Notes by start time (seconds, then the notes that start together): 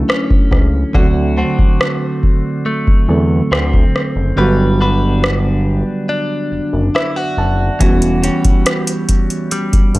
Already playing: F#3 A3 C#4 D4 E4 F#4, downlifter
0.09 C#4, cross-stick
0.31 kick
0.51 C#2, kick, cross-stick
0.93 D2 D3 F#3 A3 C4 F#4, kick
1.37 A3 C4 F#4
1.59 E2, kick
1.81 cross-stick
2.23 kick
2.66 A3
2.87 kick
3.09 E2 D3 F#3 A3 C4 A4
3.52 D2 C4, cross-stick
3.74 kick
3.96 cross-stick
4.16 F#1
4.36 G1 D3 F#3 G3 B3 F#4 B4
4.81 D4 F#4 B4
5.24 cross-stick
6.09 D4
6.52 F#1
6.73 F#1
6.95 E4 E5, cross-stick
7.16 F#4 F#5
7.37 F#1 A5
7.79 E1 E3 G3 B3 C#4 F#4, kick, closed hi-hat
8.02 closed hi-hat
8.23 G3 C#4 F#4, closed hi-hat
8.45 G1, kick, closed hi-hat
8.66 cross-stick, closed hi-hat
8.87 closed hi-hat
9.09 kick, closed hi-hat
9.30 closed hi-hat
9.51 G3, closed hi-hat
9.73 kick, closed hi-hat
9.95 G1, closed hi-hat